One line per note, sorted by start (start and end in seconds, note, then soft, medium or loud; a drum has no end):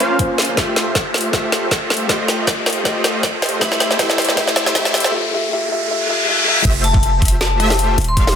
0.00 0.56 A#1 medium
0.00 0.16 A#3 medium
0.00 0.55 A#3 medium
0.00 0.17 C#4 medium
0.00 0.55 C#4 medium
0.00 0.18 F4 medium
0.00 0.55 F4 medium
0.00 0.18 C5 medium
0.00 0.55 C5 medium
0.00 0.55 F5 medium
0.00 closed hi-hat medium
0.00 riser medium
0.18 0.55 A#3 medium
0.18 0.55 C#4 medium
0.18 0.55 F4 medium
0.18 0.56 C5 loud
0.18 kick medium
0.18 closed hi-hat medium
0.38 snare medium
0.38 closed hi-hat soft
0.42 closed hi-hat medium
0.45 closed hi-hat medium
0.55 1.89 F1 medium
0.55 1.30 A3 medium
0.55 1.32 A3 medium
0.55 1.31 F4 medium
0.55 1.32 F4 medium
0.55 1.32 G4 medium
0.55 1.32 C5 medium
0.55 1.32 E5 medium
0.55 1.33 E5 medium
0.55 kick loud
0.55 snare medium
0.55 closed hi-hat medium
0.76 snare medium
0.76 closed hi-hat medium
0.95 kick loud
0.95 snare medium
0.95 closed hi-hat medium
1.14 snare medium
1.14 closed hi-hat soft
1.18 closed hi-hat medium
1.21 closed hi-hat medium
1.31 2.06 A3 medium
1.31 2.08 A3 medium
1.31 2.07 F4 medium
1.31 2.08 F4 medium
1.31 2.08 G4 medium
1.31 2.08 C5 medium
1.31 2.08 E5 medium
1.31 kick loud
1.31 snare medium
1.31 closed hi-hat medium
1.35 2.09 E5 medium
1.52 snare medium
1.52 closed hi-hat medium
1.71 kick loud
1.71 snare medium
1.71 closed hi-hat medium
1.90 3.40 D#1 medium
1.90 snare medium
1.90 closed hi-hat soft
1.94 closed hi-hat medium
1.97 closed hi-hat medium
2.07 2.82 A3 medium
2.07 2.84 A3 medium
2.07 2.83 F4 medium
2.07 2.84 F4 medium
2.07 2.84 G4 medium
2.07 2.84 C5 medium
2.07 2.84 D#5 medium
2.07 2.85 D#5 medium
2.07 kick medium
2.07 snare medium
2.07 closed hi-hat medium
2.28 snare medium
2.28 closed hi-hat medium
2.47 kick loud
2.47 snare medium
2.47 closed hi-hat medium
2.66 snare medium
2.66 closed hi-hat soft
2.70 closed hi-hat medium
2.73 closed hi-hat medium
2.83 3.58 A3 medium
2.83 3.60 A3 medium
2.83 3.60 F4 medium
2.83 3.60 G4 medium
2.83 3.60 C5 medium
2.83 3.60 D#5 medium
2.83 3.61 D#5 medium
2.83 kick loud
2.83 snare medium
2.83 closed hi-hat medium
3.04 snare medium
3.04 closed hi-hat medium
3.23 kick loud
3.23 snare medium
3.23 closed hi-hat medium
3.42 snare medium
3.42 closed hi-hat soft
3.46 closed hi-hat medium
3.49 closed hi-hat medium
3.59 5.11 C2 medium
3.59 3.96 A3 medium
3.59 3.98 A3 medium
3.59 3.97 E4 medium
3.59 3.98 E4 medium
3.59 3.98 G4 medium
3.59 3.98 C5 medium
3.59 3.98 E5 medium
3.59 kick medium
3.59 snare medium
3.59 closed hi-hat medium
3.63 3.99 E5 medium
3.72 snare medium
3.80 snare medium
3.80 closed hi-hat medium
3.91 snare medium
3.97 4.34 A3 medium
3.97 4.36 A3 medium
3.97 4.35 E4 medium
3.97 4.36 E4 medium
3.97 4.36 G4 medium
3.97 4.36 C5 medium
3.97 4.36 E5 medium
3.97 kick loud
3.97 snare medium
3.97 closed hi-hat medium
4.01 4.37 E5 medium
4.10 snare medium
4.18 snare loud
4.18 closed hi-hat medium
4.22 closed hi-hat medium
4.25 closed hi-hat medium
4.29 snare medium
4.35 4.72 A3 medium
4.35 4.74 A3 medium
4.35 4.73 E4 medium
4.35 4.74 E4 medium
4.35 4.74 G4 medium
4.35 4.74 C5 medium
4.35 4.74 E5 loud
4.35 4.75 E5 medium
4.35 kick loud
4.35 snare loud
4.35 closed hi-hat medium
4.48 snare medium
4.56 snare loud
4.56 closed hi-hat medium
4.66 snare medium
4.73 5.10 A3 medium
4.73 5.12 A3 medium
4.73 5.11 E4 medium
4.73 5.12 E4 medium
4.73 5.12 G4 medium
4.73 5.12 C5 medium
4.73 5.12 E5 loud
4.73 5.13 E5 medium
4.73 kick loud
4.73 snare loud
4.73 closed hi-hat medium
4.85 snare medium
4.94 snare loud
4.94 closed hi-hat soft
4.97 closed hi-hat medium
5.00 closed hi-hat medium
5.04 snare medium
5.11 5.29 A3 medium
5.11 5.30 F4 medium
5.11 5.31 G4 medium
5.11 5.32 E5 medium
5.30 5.48 A3 medium
5.30 5.49 F4 medium
5.30 5.50 G4 medium
5.34 5.51 E5 medium
5.49 5.66 A3 medium
5.49 5.68 F4 medium
5.49 5.69 G4 medium
5.53 5.70 E5 medium
5.68 5.86 A3 medium
5.68 5.87 F4 medium
5.68 5.88 G4 medium
5.68 5.89 E5 medium
5.87 6.04 A3 medium
5.87 6.06 F4 medium
5.87 6.07 G4 medium
5.87 6.08 E5 medium
5.87 reverse cymbal medium
6.06 6.23 A3 medium
6.06 6.25 F4 medium
6.06 6.26 G4 medium
6.06 6.27 E5 medium
6.25 6.42 A3 medium
6.25 6.44 F4 medium
6.25 6.45 G4 medium
6.25 6.46 E5 medium
6.44 6.63 A3 medium
6.44 6.63 F4 medium
6.44 6.64 G4 medium
6.44 6.65 E5 medium
6.65 7.96 F1 medium
6.65 7.58 A3 medium
6.65 7.58 F4 medium
6.65 7.58 G4 medium
6.65 7.58 C5 medium
6.65 7.58 E5 medium
6.65 7.58 E5 loud
6.65 kick loud
6.65 closed hi-hat medium
6.65 crash loud
6.84 6.91 A5 medium
6.84 closed hi-hat medium
6.94 kick loud
7.03 closed hi-hat medium
7.22 kick medium
7.22 closed hi-hat medium
7.25 closed hi-hat medium
7.28 closed hi-hat medium
7.41 7.95 A5 medium
7.41 snare loud
7.41 closed hi-hat medium
7.60 7.97 A3 medium
7.60 7.97 F4 medium
7.60 7.97 G4 medium
7.60 7.97 C5 medium
7.60 7.97 E5 loud
7.60 closed hi-hat medium
7.70 snare medium
7.79 closed hi-hat medium
7.98 8.36 D#1 medium
7.98 closed hi-hat medium
7.98 open hi-hat medium
8.04 closed hi-hat medium
8.08 8.34 C6 medium
8.17 8.36 A3 medium
8.17 8.36 D#4 medium
8.17 8.36 G4 medium
8.17 8.36 D5 medium
8.17 8.36 F5 medium
8.17 8.36 F5 loud
8.17 kick loud
8.17 closed hi-hat medium
8.27 snare medium